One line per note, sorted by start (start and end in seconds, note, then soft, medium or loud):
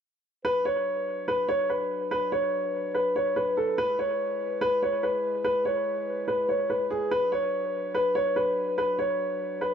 0.45 3.75 F#3 medium
0.45 3.75 D4 medium
0.45 9.74 B4 medium
0.45 0.64 B4 loud
0.65 1.24 C#5 medium
1.28 1.47 B4 medium
1.49 1.68 C#5 medium
1.70 2.09 B4 medium
2.11 2.30 B4 medium
2.32 2.91 C#5 medium
2.94 3.13 B4 medium
3.16 3.35 C#5 medium
3.36 3.55 B4 medium
3.57 3.76 A4 medium
3.78 7.08 G#3 medium
3.78 7.08 E4 medium
3.78 3.97 B4 loud
3.99 4.58 C#5 medium
4.61 4.80 B4 medium
4.82 5.01 C#5 medium
5.03 5.42 B4 medium
5.44 5.63 B4 medium
5.65 6.24 C#5 medium
6.28 6.47 B4 medium
6.49 6.68 C#5 medium
6.70 6.89 B4 medium
6.90 7.09 G#4 medium
7.11 9.74 F#3 medium
7.11 9.74 D4 medium
7.11 7.30 B4 loud
7.32 7.91 C#5 medium
7.94 8.13 B4 medium
8.15 8.34 C#5 medium
8.36 8.75 B4 medium
8.78 8.97 B4 medium
8.99 9.57 C#5 medium
9.61 9.74 B4 medium